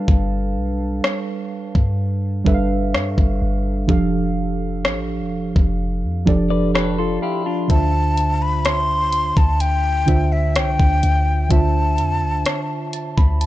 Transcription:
Already playing: synth keys G3 D4 A4 B4 F5 A5
0.08 808-style bass G1, kick
0.56 808-style bass B1
1.04 cross-stick
1.75 808-style bass G2, kick
2.44 808-style bass G1, synth keys G3 D4 A4 B4 E5, kick
2.54 synth keys F5
2.94 808-style bass G2, cross-stick
3.18 808-style bass G1, kick
3.42 808-style bass G1
3.87 808-style bass F1, synth keys F3 D4 G4 A4 F5, kick
4.85 808-style bass A1, cross-stick
5.20 808-style bass F1
5.56 808-style bass F1, kick
6.04 808-style bass F2
6.25 808-style bass F1, synth keys F3 D4 G4 A4 D5, kick
6.50 clean electric guitar B4 D5
6.75 clean electric guitar G4 B4, synth keys A5, cross-stick
6.98 clean electric guitar F4 A4, synth keys C6
7.22 clean electric guitar E4 G4, synth keys F5 B5
7.46 clean electric guitar D4 F4, synth keys A5
7.68 808-style bass D2, synth keys D3 D4 F4 C5 E5, flute A5, kick, closed hi-hat
8.17 closed hi-hat
8.42 flute B5
8.65 flute C6, cross-stick, closed hi-hat
9.13 closed hi-hat
9.37 808-style bass D2, flute A5, kick
9.60 flute G5, closed hi-hat
10.06 808-style bass D2, synth keys D3 D4 F4 C5 E5, kick, closed hi-hat
10.32 flute E5
10.56 808-style bass C2, flute G5, cross-stick, closed hi-hat
10.80 808-style bass D2, kick
11.03 808-style bass D2, closed hi-hat
11.49 808-style bass D2, synth keys D3 D4 F4 C5 E5, flute A5, kick, closed hi-hat
11.98 808-style bass F2, closed hi-hat
12.22 808-style bass D2
12.46 cross-stick, closed hi-hat
12.93 synth keys A5, closed hi-hat
13.17 808-style bass D2, synth keys B5, kick
13.41 synth keys A5, closed hi-hat

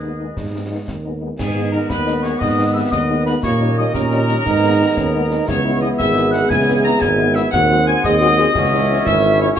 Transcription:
Already playing: tuba D#2, trumpet section G#4, woodwind section B4 D#5
0.02 french horn section G#3 B3 D#4
0.20 french horn section G#3 B3 D#4
0.37 tuba G#2, concert bass drum, snare
0.54 french horn section G#3 B3 D#4
0.71 french horn section G#3 B3 D#4
0.88 tuba D#2, concert bass drum, snare
1.05 french horn section G#3 B3 D#4
1.22 french horn section G#3 B3 D#4
1.38 tuba G#2, trombone section D#3 B3, euphonium D#4, trumpet section G#4, woodwind section B4 D#5, piccolo G#5, concert bass drum, snare, crash
1.56 french horn section G#3 B3 D#4
1.71 french horn section G#3 B3 D#4, trumpet section A#4, piccolo A#5
1.89 tuba D#2, euphonium B3, trumpet section B4, piccolo B5, concert bass drum, snare
2.07 french horn section G#3 B3 D#4, snare
2.22 french horn section G#3 B3 D#4, trumpet section C#5, piccolo C#6, snare
2.39 tuba G#2, trumpet section D#5, piccolo D#6, concert bass drum, snare
2.58 french horn section G#3 B3 D#4
2.73 french horn section G#3 B3 D#4, trumpet section E5, piccolo E6
2.91 tuba D#2, trumpet section D#5, piccolo D#6, concert bass drum, snare
3.10 french horn section G#3 B3 D#4
3.25 french horn section G#3 B3 D#4, trumpet section B4, piccolo B5, snare
3.43 tuba A#2, trombone section D#3 C#4, euphonium A#3, woodwind section G4 D#5, trumpet section C#5, piccolo C#6, concert bass drum, snare
3.61 french horn section G3 C#4 D#4
3.78 french horn section G3 C#4 D#4, trumpet section D#5, piccolo D#6
3.94 tuba A#2, euphonium C#4, trumpet section A#4, piccolo A#5, concert bass drum, snare
4.12 french horn section G3 C#4 D#4, snare
4.29 french horn section G3 C#4 D#4, snare
4.46 tuba G#2, trombone section B3, euphonium D#4, woodwind section G#4, concert bass drum, snare
4.64 french horn section G#3 B3 D#4
4.81 french horn section G#3 B3 D#4
4.97 tuba D#2, euphonium C#4, concert bass drum, snare
5.14 french horn section G#3 B3 D#4, euphonium B3
5.30 french horn section G#3 B3 D#4, euphonium D#4, snare
5.47 tuba C#2, trombone section E3 B3, euphonium E4, woodwind section G#4 E5, trumpet section C#5, piccolo C#6, concert bass drum, snare, crash
5.64 french horn section G#3 B3 E4
5.81 french horn section G#3 B3 E4, trumpet section D#5, piccolo D#6
5.98 tuba G#1, euphonium G#4, trumpet section E5, piccolo E6, concert bass drum, snare
6.15 french horn section G#3 B3 E4, snare
6.31 french horn section G#3 B3 E4, trumpet section F#5, piccolo F#6, snare
6.49 tuba C#2, trumpet section G#5, piccolo G#6, concert bass drum, snare
6.67 french horn section G#3 B3 E4
6.84 french horn section G#3 B3 E4, trumpet section A#5, piccolo A#6
7.01 tuba G#1, trumpet section G#5, piccolo G#6, concert bass drum, snare
7.19 french horn section G#3 B3 E4
7.35 french horn section G#3 B3 E4, trumpet section E5, piccolo E6, snare
7.51 tuba D#2, trombone section F#3 C4, euphonium F#4, woodwind section G#4 F#5, trumpet section F#5, piccolo F#6, concert bass drum, snare
7.71 french horn section G#3 C4 F#4
7.87 french horn section G#3 C4 F#4, trumpet section G#5, piccolo G#6
8.03 tuba D#2, euphonium G#4, trumpet section D#5, piccolo D#6, concert bass drum, snare
8.20 french horn section G#3 C4 F#4, euphonium F#4, snare
8.38 french horn section G#3 C4 F#4, euphonium G#4, snare
8.54 tuba C#2, trombone section E3 C#4, euphonium F#4, woodwind section E5, concert bass drum, snare
8.73 french horn section G#3 C#4 E4
8.90 french horn section G#3 C#4 E4
9.06 tuba G#1, euphonium E4, trumpet section E5, piccolo E6, concert bass drum, snare
9.24 french horn section G#3 C#4 E4
9.40 french horn section G#3 C#4 E4, trumpet section C#5, piccolo C#6
9.56 trombone section A3, euphonium F#4, woodwind section A4 C#5, trumpet section C#5

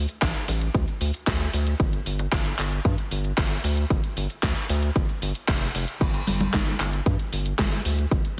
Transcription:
0.09 closed hi-hat
0.22 analog synth bass A1, kick, snare, clap, closed hi-hat
0.35 closed hi-hat
0.48 analog synth bass A1, open hi-hat, high conga
0.61 closed hi-hat
0.75 analog synth bass D2, kick, closed hi-hat
0.88 closed hi-hat
1.01 analog synth bass D2, open hi-hat
1.14 closed hi-hat
1.27 analog synth bass D2, kick, snare, clap, closed hi-hat
1.40 closed hi-hat, high conga
1.53 analog synth bass D2, open hi-hat, high conga
1.67 closed hi-hat
1.80 analog synth bass G1, kick, closed hi-hat
1.93 closed hi-hat
2.06 analog synth bass G1, open hi-hat
2.19 closed hi-hat, high conga
2.32 analog synth bass G1, kick, snare, clap, closed hi-hat
2.46 closed hi-hat
2.59 analog synth bass G1, clap, open hi-hat, high conga
2.72 closed hi-hat
2.85 analog synth bass G2, kick, closed hi-hat
2.98 closed hi-hat
3.11 analog synth bass G1, open hi-hat
3.25 closed hi-hat
3.38 analog synth bass G1, kick, snare, clap, closed hi-hat
3.51 closed hi-hat
3.64 analog synth bass D2, open hi-hat, high conga
3.77 closed hi-hat
3.90 analog synth bass G1, kick, closed hi-hat
4.04 closed hi-hat
4.17 analog synth bass G1, open hi-hat
4.30 closed hi-hat
4.43 analog synth bass D2, kick, snare, clap, closed hi-hat
4.56 closed hi-hat
4.70 analog synth bass D2, open hi-hat, high conga
4.83 closed hi-hat
4.96 analog synth bass G1, kick, closed hi-hat
5.09 closed hi-hat
5.22 analog synth bass G1, open hi-hat
5.35 closed hi-hat
5.48 analog synth bass F1, kick, snare, clap, closed hi-hat
5.62 closed hi-hat, high conga
5.75 analog synth bass F1, open hi-hat, high conga
5.88 closed hi-hat
6.01 analog synth bass G1, kick, closed hi-hat, crash
6.14 closed hi-hat
6.27 analog synth bass G1, open hi-hat, high conga
6.41 closed hi-hat, high conga
6.54 analog synth bass G1, kick, snare, clap, closed hi-hat
6.67 closed hi-hat
6.80 analog synth bass G1, clap, open hi-hat
6.93 closed hi-hat
7.06 analog synth bass G2, kick, closed hi-hat
7.19 closed hi-hat
7.33 analog synth bass G1, open hi-hat
7.46 closed hi-hat
7.59 analog synth bass G1, kick, snare, clap, closed hi-hat
7.72 closed hi-hat
7.85 analog synth bass D2, open hi-hat
7.99 closed hi-hat
8.11 analog synth bass G1, kick, closed hi-hat
8.25 closed hi-hat

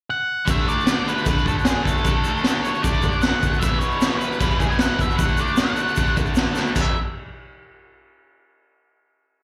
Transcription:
0.10 lead electric guitar F#5
0.46 overdriven electric guitar D3 A3 D4, kick, crash, shaker
0.50 lead electric guitar E5
0.65 overdriven electric guitar D3 A3 D4, lead electric guitar D5, shaker
0.80 shaker
0.86 overdriven electric guitar D3 A3 D4, snare, crash, shaker
1.07 overdriven electric guitar D3 A3 D4, lead electric guitar B4, shaker
1.18 shaker
1.26 overdriven electric guitar D3 A3 D4, kick, crash, shaker
1.38 shaker
1.45 overdriven electric guitar D3 A3 D4, lead electric guitar A4, kick, shaker
1.59 shaker
1.65 overdriven electric guitar D3 A3 D4, lead electric guitar G#4, snare, crash, shaker
1.85 overdriven electric guitar D3 A3 D4, lead electric guitar A4, kick, shaker
1.97 shaker
2.04 overdriven electric guitar D3 A3 D4, kick, crash, shaker
2.24 overdriven electric guitar D3 A3 D4, shaker
2.37 shaker
2.44 overdriven electric guitar D3 A3 D4, snare, crash, shaker
2.62 overdriven electric guitar D3 A3, lead electric guitar C#5, shaker
2.67 overdriven electric guitar D4
2.74 shaker
2.82 overdriven electric guitar D3 A3 D4, lead electric guitar D5, kick, crash, shaker
3.02 overdriven electric guitar D3 A3 D4, kick, shaker
3.12 shaker
3.22 overdriven electric guitar D3 A3, lead electric guitar F#5, snare, crash, shaker
3.26 overdriven electric guitar D4
3.43 overdriven electric guitar D3 A3 D4, kick, shaker
3.54 shaker
3.60 overdriven electric guitar E2 B2, lead electric guitar E5, kick, crash, shaker
3.64 overdriven electric guitar E3
3.79 overdriven electric guitar E2 B2, lead electric guitar C#5, shaker
3.84 overdriven electric guitar E3
3.91 shaker
4.01 overdriven electric guitar E2 B2 E3, snare, crash, shaker
4.18 overdriven electric guitar E2, lead electric guitar B4, shaker
4.22 overdriven electric guitar B2 E3
4.32 shaker
4.40 overdriven electric guitar E2 B2 E3, kick, crash, shaker
4.50 shaker
4.59 overdriven electric guitar E2 B2 E3, lead electric guitar G#4, kick, shaker
4.69 lead electric guitar G#5, shaker
4.79 overdriven electric guitar E2 B2 E3, lead electric guitar F#5, snare, crash, shaker
4.99 overdriven electric guitar E2 B2 E3, lead electric guitar E5, kick, shaker
5.11 shaker
5.17 overdriven electric guitar D3 A3 D4, lead electric guitar F#5, kick, crash, shaker
5.28 shaker
5.37 overdriven electric guitar D3 A3 D4, lead electric guitar D5, shaker
5.47 shaker
5.57 overdriven electric guitar D3 A3 D4, lead electric guitar F#5, snare, crash, shaker
5.67 shaker
5.76 overdriven electric guitar D3 A3 D4, shaker
5.88 shaker
5.96 overdriven electric guitar D3 A3 D4, kick, crash, shaker
6.16 overdriven electric guitar D3 A3 D4, kick, shaker
6.26 shaker
6.35 overdriven electric guitar D3 A3 D4, snare, crash, shaker
6.55 overdriven electric guitar D3 A3 D4, snare, shaker
6.67 shaker
6.75 overdriven electric guitar E2 B2 E3, kick, crash, shaker
6.81 lead electric guitar E5

